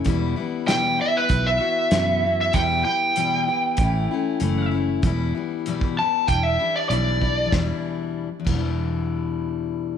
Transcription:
<<
  \new Staff \with { instrumentName = "Lead electric guitar" } { \time 4/4 \key e \dorian \tempo 4 = 96 r4 g''8 e''16 b'8 e''4. e''16 | g''8 g''2. r8 | r4. a''8 g''16 e''8 d''16 d''4 | r1 | }
  \new Staff \with { instrumentName = "Steel-string acoustic guitar" } { \clef bass \time 4/4 \key e \dorian <e, b, e g b e'>8 <e g b e'>8 <e, b, e g b e'>8 <e g b e'>8 <e b e' fis'>8 <b e' fis'>8 <b, e b e' fis'>8 <b e' fis'>8 | <e, b, e g b e'>8 <e g b e'>8 <e, b, e g b e'>8 <e g b e'>8 <e a cis' e'>8 <a cis' e'>8 <a, e a cis' e'>8 <a cis' e'>8 | <e, b, e g b e'>8 <e g b e'>8 <e, b, e g b e'>8 <e g b e'>8 <e g d' e'>8 <e g d' e'>8 <e, b, e g d' e'>8 <e g d' e'>8 | <e, b, e g d' e'>8 r4 <e, b, e g d' e'>2~ <e, b, e g d' e'>8 | }
  \new Staff \with { instrumentName = "Picked electric bass" } { \clef bass \time 4/4 \key e \dorian e,,8 r4. b,,8 r8 fis,4 | e,8 r4. a,,8 r8 fis,,4 | e,,8 r4. e,,8 r8 b,,4 | e,,8 r4 e,,2~ e,,8 | }
  \new DrumStaff \with { instrumentName = "Drums" } \drummode { \time 4/4 <hh bd>4 <hh sn>4 <hh bd>4 <hh sn>4 | <hh bd>4 hh4 <hh bd>4 hh4 | <hh bd>4 hh16 bd8. <hh bd>4 hh8 bd8 | <bd sn>4 r8 <cymc bd>8 r4 r4 | }
>>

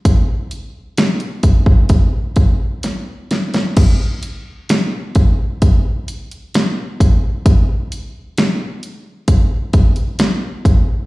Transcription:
\new DrumStaff \with { instrumentName = "Drums" } \drummode { \time 4/4 \tempo 4 = 65 <hh bd>8 hh8 <hh sn>16 hh16 <hh bd>16 bd16 <hh bd>8 <hh bd>8 <hh sn>8 <hh sn>16 <hh sn>16 | <cymc hh bd>8 hh8 <hh sn>8 <hh bd>8 <hh bd>8 hh16 hh16 <hh sn>8 <hh bd>8 | <hh bd>8 hh8 <hh sn>8 hh8 <hh bd>8 <hh bd>16 hh16 <hh sn>8 <hh bd>8 | }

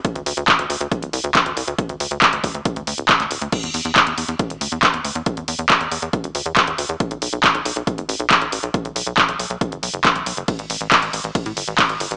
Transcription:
<<
  \new Staff \with { instrumentName = "Analog synth bass" } { \clef bass \time 4/4 \key b \phrygian \tempo 4 = 138 r16 d,16 d,16 d,16 r16 d,16 d,16 d,16 r16 d,,16 c,16 d,16 r16 d,16 c,16 d,16 | r16 d,16 d,16 d,16 r16 d,16 d,16 d,16 r16 d,16 d,16 d,,16 r16 d,16 d,,16 d,16 | r16 e,16 e,16 e,16 r16 e,16 e,16 e,16 r16 e,,16 d,16 e,16 r16 e,16 d,16 e,16 | r16 e,16 e,16 e,16 r16 e,16 e,16 e,16 r16 e,,16 d,16 e,16 r16 e,16 d,16 e,16 |
r16 b,,16 b,,16 b,,16 r16 b,,16 b,,16 b,,16 r16 fis,,16 a,,16 b,,16 r16 b,,16 a,,16 b,,16 | r16 b,,16 b,,16 b,,16 r16 b,,16 b,,16 b,,16 r16 fis,,16 b,,16 fis,,16 r16 b,,16 b,,16 fis,,16 | r16 a,,16 a,,16 a,,16 r16 a,,16 a,,16 a,,16 r16 a,16 g,,16 a,,16 r16 a,,16 g,,16 a,,16 | }
  \new DrumStaff \with { instrumentName = "Drums" } \drummode { \time 4/4 <hh bd>16 hh16 hho16 hh16 <hc hh bd>16 hh16 hho16 hh16 <hh bd>16 hh16 hho16 hh16 <hc hh bd>16 hh16 hho16 hh16 | <hh bd>16 hh16 hho16 hh16 <hc hh bd>16 hh16 <hho bd>16 hh16 <hh bd>16 hh16 hho16 hh16 <hc hh bd>16 <hc hh>16 hho16 hh16 | <cymc hh bd>16 hh16 hho16 hh16 <hc hh bd>16 hh16 hho16 hh16 <hh bd>16 hh16 hho16 hh16 <hc hh bd>16 hh16 hho16 hh16 | <hh bd>16 hh16 hho16 hh16 <hc hh bd>16 hh16 hho16 hh16 <hh bd>16 hh16 hho16 hh16 <hc hh bd>16 hh16 hho16 hh16 |
<hh bd>16 hh16 hho16 hh16 <hc hh bd>16 hh16 hho16 hh16 <hh bd>16 hh16 hho16 hh16 <hc hh bd>16 hh16 hho16 hh16 | <hh bd>16 hh16 hho16 hh16 <hc hh bd>16 hh16 hho16 hh16 <hh bd>16 hh16 hho16 hh16 <hc hh bd>16 hh16 hho16 hh16 | <hh bd cymr>16 hh16 hho16 hh16 <hc hh bd cymr>16 hh16 hho16 hh16 <hh bd cymr>16 hh16 hho16 hh16 <hc hh bd cymr>16 hh16 hho16 hh16 | }
>>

